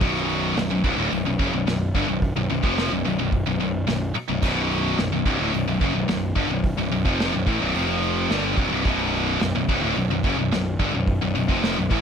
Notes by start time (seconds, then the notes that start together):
0.00 B0 B1 F#2 B2, kick, open hi-hat
0.16 snare
0.29 open hi-hat
0.56 B0 B1 F#2, snare, open hi-hat
0.70 B0 B1 F#2
0.84 C1 C2 G2, kick, open hi-hat
0.98 D1 D2 A2
1.12 B0 B1 F#2, open hi-hat
1.25 B0 B1 F#2
1.39 F#1 F#2 C#3, kick, open hi-hat
1.53 B0 B1 F#2
1.67 B0 B1 F#2, snare, open hi-hat
1.95 G1 G2 D3, kick, open hi-hat
2.08 B0 B1 F#2
2.22 kick, open hi-hat
2.36 B0 B1 F#2
2.49 B0 B1 F#2, open hi-hat
2.63 F1 F2 C3 F3, kick
2.78 snare, open hi-hat
2.90 B0 B1 F#2
3.05 B0 B1 F#2, open hi-hat
3.19 B0 B1 F#2
3.33 kick, open hi-hat
3.47 B0 B1 F#2
3.60 B0 B1 F#2, open hi-hat
3.87 B0 B1 F#2, snare, open hi-hat
4.15 muted picked electric bass stroke, muted distorted electric guitar stroke, open hi-hat
4.29 B0 B1 F#2
4.42 B0 B1 F#2 B2, kick, crash
4.71 open hi-hat
4.98 B0 B1 F#2, snare, open hi-hat
5.12 B0 B1 F#2
5.25 C1 C2 G2, kick, open hi-hat
5.40 D1 D2 A2
5.53 B0 B1 F#2, open hi-hat
5.67 B0 B1 F#2
5.81 F#1 F#2 C#3, kick, open hi-hat
5.95 B0 B1 F#2
6.08 B0 B1 F#2, snare, open hi-hat
6.35 G1 G2 D3, kick, open hi-hat
6.49 B0 B1 F#2
6.64 kick, open hi-hat
6.77 B0 B1 F#2
6.91 B0 B1 F#2, open hi-hat
7.05 F1 F2 C3 F3, kick
7.20 snare, open hi-hat
7.34 B0 B1 F#2
7.47 A1 A2 E3, kick, open hi-hat
7.61 B0 B1 F#2
7.75 F1 F2 C3 F3, open hi-hat
8.02 open hi-hat
8.30 G1 G2 D3 G3, snare, open hi-hat
8.57 B0 B1 F#2, kick, open hi-hat
8.71 C1 C2 G2
8.85 B0 B1 F#2 B2, kick, open hi-hat
9.13 open hi-hat
9.41 B0 B1 F#2, snare, open hi-hat
9.55 B0 B1 F#2
9.69 C1 C2 G2, kick, open hi-hat
9.82 D1 D2 A2
9.96 B0 B1 F#2, open hi-hat
10.10 B0 B1 F#2
10.24 F#1 F#2 C#3, kick, open hi-hat
10.38 B0 B1 F#2
10.52 B0 B1 F#2, snare, open hi-hat
10.79 G1 G2 D3, kick
10.94 B0 B1 F#2
11.07 kick, open hi-hat
11.22 B0 B1 F#2
11.35 B0 B1 F#2, open hi-hat
11.48 F1 F2 C3 F3, kick
11.63 snare, open hi-hat
11.77 B0 B1 F#2
11.90 A1 A2 E3, kick, open hi-hat